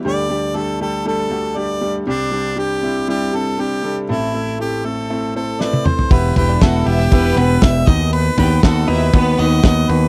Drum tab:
CC |----------------|----------------|----------------|x---------------|
RD |----------------|----------------|----------------|--x-x-x-x-x-x-x-|
SD |----------------|----------------|------------o---|----o--o----o---|
T1 |----------------|----------------|-------------o--|----------------|
T2 |----------------|----------------|--------------o-|----------------|
FT |----------------|----------------|---------------o|--o-----------o-|
BD |----------------|----------------|----------------|o---o---o---o-o-|

CC |----------------|
RD |x-x-x-x-x-x-x-x-|
SD |----o-------o---|
T1 |----------------|
T2 |----------------|
FT |--o-------------|
BD |----o---o---o---|